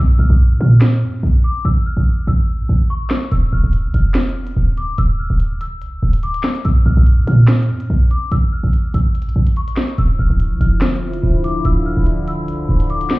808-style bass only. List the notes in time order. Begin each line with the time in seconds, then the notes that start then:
0.00 A#1
0.19 A#1
0.30 A#1
0.51 A#2
0.61 A#2
1.02 F2
1.13 A#2
1.23 A#1
1.65 A1
1.97 A1
2.27 A1
2.59 A2
2.69 A1
3.32 D1
3.53 D1
3.63 D1
3.84 D2
3.94 F1
4.57 D1
4.98 D1
5.30 D1
5.82 D2
5.93 D1
6.03 D1
6.65 A#1
6.86 A#1
6.97 A#1
7.18 A#2
7.27 A#2
7.69 F2
7.80 A#2
7.90 A#1
8.32 A1
8.63 A1
8.94 A1
9.26 A2
9.36 A1
9.98 D1
10.19 D1
10.30 D1
10.51 D2
10.61 F1
11.23 D1
11.65 D1
11.97 D1
12.48 D2
12.59 D1
12.69 D1